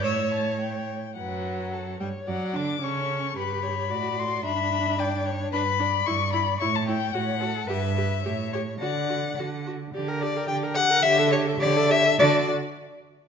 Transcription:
X:1
M:2/4
L:1/16
Q:1/4=109
K:D
V:1 name="Violin"
e'2 a2 g4 | f6 g2 | f2 d'2 c'4 | b6 =c'2 |
b4 g2 z2 | b4 c'2 b2 | c' a g2 f4 | e6 c2 |
d4 z4 | d g d g d g d z | c e c e c e c e | A2 z6 |]
V:2 name="Violin"
c6 z2 | B4 A2 c2 | d4 A4 | B2 c2 d4 |
e4 d2 c2 | B2 d6 | c4 c2 A2 | B2 B2 c4 |
f6 z2 | z2 d2 g2 f2 | e2 c2 d2 e2 | d2 z6 |]
V:3 name="Viola"
c6 z2 | F,6 G,2 | F,2 D2 C4 | G4 F4 |
D8 | D2 D2 E2 E2 | E2 E2 F2 F2 | G2 G2 G2 G2 |
F2 F2 F2 F2 | G _B G B G B G B | G A G A G A G A | F2 z6 |]
V:4 name="Cello" clef=bass
A,,6 z2 | F,,6 G,,2 | F,,2 D,2 C,4 | G,,4 A,,4 |
G,,8 | G,,4 G,,4 | A,,4 A,,4 | G,,4 A,,4 |
D,4 D,4 | D,4 D,4 | D,4 D,4 | D,2 z6 |]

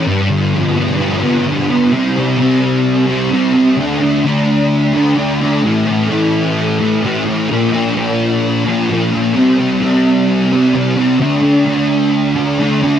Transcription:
X:1
M:4/4
L:1/8
Q:1/4=129
K:Gmix
V:1 name="Distorted electric guitar"
G,, D, F, B, F B, D, B, | [K:Dm] [C,G,C] [G,C] [C,G,C]3 [G,C] [C,G,C] [G,C] | [D,A,D] [A,D] [D,A,D]3 [A,D] [D,A,D] [A,D] | [A,,E,A,] [E,A,] [A,,E,A,]3 [E,A,] [A,,E,A,] [E,A,] |
[B,,F,B,] [F,B,] [B,,F,B,]3 [F,B,] [B,,F,B,] [F,B,] | [C,G,C] [G,C] [C,G,C]3 [G,C] [C,G,C] [G,C] | [D,A,D] [A,D] [D,A,D]3 [A,D] [D,A,D] [A,D] |]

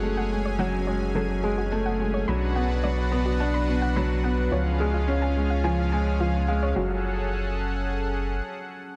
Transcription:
X:1
M:4/4
L:1/16
Q:1/4=107
K:F#m
V:1 name="Synth arpeggio sound"
z f z c f z c z A z G F z f z c | b z f z d z B F z b z f b z f z | c z G ^E z g z ^e g z g z E z e c | F2 z12 z2 |]
V:2 name="Analog synth pad"
[CGg]16 | [DFBf]16 | [C^EG^e]16 | [CGAf]16 |]
V:3 name="Felt piano" clef=bass
A,2 G,2 F,2 G,2 F,2 G,2 A,2 G,2 | F,2 B,2 F,2 B,2 D2 B,2 F,2 B,2 | ^E,2 G,2 C2 G,2 E,2 G,2 E,2 G,2 | F,2 z12 z2 |]
V:4 name="Sub bass" clef=bass
F,,,16 | B,,,16 | C,,16 | F,,,12 z4 |]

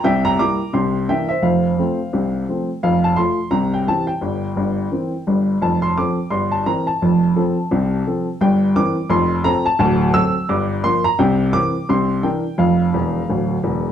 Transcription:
X:1
M:4/4
L:1/8
Q:"Swing" 1/4=172
K:F
V:1 name="Upright piano"
[eg] [gb] [bd']2 [gc']2 [eg] [ce] | [cf]6 z2 | f a c'2 b g a g- | g6- g z |
a c' d'2 c' a b a- | a6- a z | g2 d'2 c'2 b a | a2 e'2 d'2 c' b |
g2 d'2 c'2 g2 | f6 z2 |]
V:2 name="Upright piano" clef=bass
[C,,C,]2 [G,B,E]2 [C,,C,]2 [E,B,D]2 | [F,,,F,,]2 [F,A,C]2 [C,,C,]2 [F,A,C]2 | [F,,,F,,]2 [F,A,F]2 [C,,C,]2 [E,CG]2 | [G,,,G,,]2 [G,,,G,,]2 [E,CB]2 [G,,,G,,]2 |
[F,,,F,,]2 [F,CA]2 [G,,,G,,]2 [E,CB]2 | [F,,,F,,]2 [F,CA]2 [C,,C,]2 [F,CA]2 | [G,,,G,,]2 [E,CB]2 [F,,,F,,]2 [F,CA]2 | [D,,,D,,]2 [^F,CA]2 [G,,,G,,]2 [=F,B,B]2 |
[C,,C,]2 [E,CB]2 [C,,C,]2 [E,DB]2 | [F,,,F,,]2 [E,,,E,,]2 [D,,,D,,]2 [E,,,E,,]2 |]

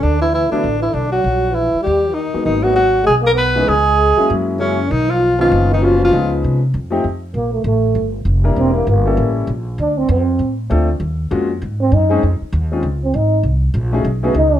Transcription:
X:1
M:4/4
L:1/8
Q:"Swing" 1/4=197
K:F#
V:1 name="Tenor saxophone"
=D =E E D2 E D F- | F2 =E2 =G2 D2 | D F F2 G A B2 | G4 z2 C2 |
D E2 E2 D E E- | E z6 z | [K:Dphr] z8 | z8 |
z8 | z8 | z8 | z8 |]
V:2 name="Grand piano"
z3 [F,=A,B,=D=E] z4 | z6 z [F,G,A,B,D]- | [F,G,A,B,D] [F,G,A,B,D] z4 z [=E,G,B,CD] | z3 [F,G,A,C=E]3 [F,G,A,CE] z |
z3 [D,A,B,CD]3 [F,A,B,CE]2 | [E,G,B,CD]3 z2 [=F,=A,=C_E=G] z2 | [K:Dphr] z6 z [G,B,D=EB]- | [G,B,D=EB]2 z [G,B,_DEA]3 z2 |
z6 [A,CDFA] z | z2 [_A,B,_DF_G] z4 [A,CDE_A] | z3 [_A,C_DEF] z4 | z3 [A,_DE_G_A] z [=A,^C^D^F^G] z2 |]
V:3 name="Trombone" clef=bass
=D, =E, E, D,2 E, D, F,- | F,2 =E,2 =G,2 D,2 | D, F, F,2 G, A, B,2 | G,4 z2 C,2 |
D, E,2 E,2 D, E, E,- | E, z6 z | [K:Dphr] B, A, A,3 z3 | C B, B,3 z3 |
D C C3 z3 | z4 z C E2 | z4 z C E2 | z4 z =B, ^D2 |]
V:4 name="Upright bass" clef=bass
=D,,3 z =A,,,2 B,,,2 | A,,,3 z D,,3 z | G,,,4 B,,,4 | C,,3 z F,,4 |
B,,,4 F,,,4 | C,,2 ^B,,2 =F,,2 F,,2 | [K:Dphr] B,,,2 A,,,2 G,,,2 F,,,2 | =E,,,2 G,,,2 A,,,2 B,,,2 |
D,,2 F,,2 A,,2 D,,2 | E,,2 F,,2 _A,,2 _G,,2 | F,, z E,,2 _D,,2 _A,,,2 | C,,2 B,,,2 =B,,,2 ^C,,2 |]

